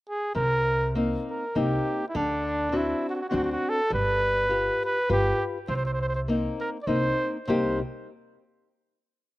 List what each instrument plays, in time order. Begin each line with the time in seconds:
0.09 flugelhorn G#4
0.35 upright bass C2, nylon-string guitar C3, flugelhorn A#4
0.95 nylon-string guitar A#3 C4 D#4
1.30 flugelhorn A#4
1.55 upright bass C2, nylon-string guitar A#3 C4 D#4, flugelhorn G4
2.08 flugelhorn E4
2.15 upright bass D2, nylon-string guitar D3, flugelhorn D4
2.72 nylon-string guitar C4 D4 F#4
2.77 flugelhorn E4
3.10 flugelhorn F#4
3.15 flugelhorn F#4
3.21 flugelhorn F#4
3.29 nylon-string guitar C4 D4 F#4, flugelhorn F#4
3.33 upright bass D2, flugelhorn F#4
3.44 flugelhorn F#4
3.52 flugelhorn F#4
3.69 flugelhorn A4
3.90 upright bass G1, nylon-string guitar G3, flugelhorn B4
4.49 nylon-string guitar F4 G4 B4
4.85 flugelhorn B4
5.09 upright bass G1, nylon-string guitar F4 G4 B4, flugelhorn G4
5.68 upright bass C2, nylon-string guitar C3, flugelhorn C5
5.76 flugelhorn C5
5.86 flugelhorn C5
5.94 flugelhorn C5
6.01 flugelhorn C5
6.08 flugelhorn C5
6.15 flugelhorn C5
6.28 nylon-string guitar A#3 C4 D#4
6.60 flugelhorn A#4
6.82 flugelhorn D5
6.87 upright bass C2, nylon-string guitar A#3 C4 D#4, flugelhorn C5
7.47 upright bass C2, nylon-string guitar C3 G3 A#3 D#4 G4, flugelhorn C5